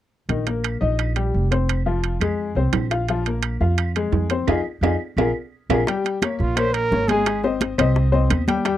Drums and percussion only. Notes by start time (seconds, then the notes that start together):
0.29 high timbale
0.47 high timbale
0.64 high timbale, claves
0.99 high timbale, claves
1.16 high timbale
1.52 high timbale
1.69 high timbale, claves
2.04 high timbale
2.21 high timbale, claves
2.73 high timbale, low timbale, claves
2.91 high timbale
3.08 high timbale
3.26 high timbale
3.43 high timbale, claves
3.78 high timbale, claves
3.96 high timbale
4.12 low timbale
4.30 high timbale
4.47 high timbale, claves
4.83 high timbale, claves
5.18 high timbale, claves
5.70 high timbale, claves
5.87 high bongo, high conga, high timbale
6.04 high bongo, high conga, high timbale
6.22 high bongo, high conga, high timbale, claves
6.40 high bongo, high conga
6.56 high bongo, high conga, high timbale, claves
6.74 high conga, high timbale
6.91 high bongo, low bongo, high conga
7.08 high bongo, high conga, high timbale
7.26 high bongo, high conga, high timbale, claves
7.44 high bongo, high conga
7.61 high bongo, high conga, high timbale
7.78 high bongo, high conga, high timbale, claves
7.96 high bongo, high conga
8.13 high conga
8.30 high bongo, low bongo, high conga, high timbale, claves
8.48 high bongo, high conga, high timbale
8.65 high bongo, high conga, high timbale